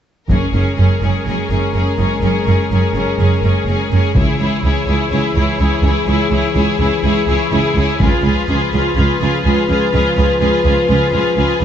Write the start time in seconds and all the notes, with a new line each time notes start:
0.29 F#1 F#2 G#3 C#4 G#4 A#4, taiko
0.53 F#1 F#2 C#4 G#4 A#4
0.78 F#1 F#2 C#4 G#4 A#4
1.00 F#1 F#2 C#4 G#4 A#4
1.25 F#1 C#4 G#4 A#4
1.29 F#2
1.47 F#1 A#4
1.51 F#2 C#4 G#4
1.72 F#1 F#2 C#4 G#4 A#4
1.97 F#1 F#2 C#4 G#4 A#4
2.22 F#1 F#2 C#4 G#4 A#4
2.45 F#1 F#2 C#4 G#4 A#4
2.69 F#1 F#2 C#4 G#4 A#4
2.94 F#1 F#2 C#4 G#4 A#4
3.18 F#1 F#2 C#4 G#4 A#4
3.42 F#1 F#2 C#4 A#4
3.46 G#4
3.66 F#1 F#2 C#4 G#4 A#4
3.91 F#1 F#2 C#4 G#4 A#4
4.15 C#2 C#3 E3 E4 G#4 C#5, taiko
4.40 C#2 E4 G#4 C#5
4.63 C#2 E4 G#4 C#5
4.87 C#2 E4 G#4 C#5
5.11 C#2 E4 G#4 C#5
5.34 C#2 E4 G#4 C#5
5.59 C#2 E4 G#4 C#5
5.82 C#2 E4 G#4 C#5
6.07 C#2 E4 G#4 C#5
6.30 C#2 E4 G#4 C#5
6.55 C#2 E4 G#4 C#5
6.79 C#2 E4 G#4 C#5
7.03 C#2 E4 G#4 C#5
7.27 C#2 E4 G#4 C#5
7.51 C#2 E4 G#4 C#5
7.75 C#2 G#4 C#5
7.79 E4
7.99 C#2 F3 G#4 B4, taiko
8.04 F4
8.22 C#2 G#4 B4
8.27 C#2 F4
8.47 C#2 G#4 B4
8.51 F4
8.73 C#2 F4 G#4 B4
8.96 C#2 F4 G#4 B4
9.20 C#2 F4 G#4 B4
9.43 C#2 F4 G#4 B4
9.69 C#2 F4 G#4 B4
9.93 C#2 F4 G#4 B4
10.17 C#2 F4 G#4 B4
10.39 C#2 F4 G#4
10.43 B4
10.64 C#2 F4 G#4 B4
10.89 C#2 F4 G#4 B4
11.12 C#2 F4 G#4 B4
11.37 C#2 F4 G#4 B4
11.60 C#2 B4